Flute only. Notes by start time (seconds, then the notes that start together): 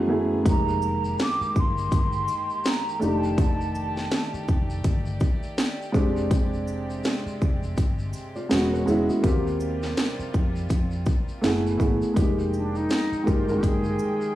0.50 A#5
1.22 D6
1.59 C6
2.68 A#5
3.04 A5
12.55 D4
12.76 D#4
13.28 F4
13.65 G#4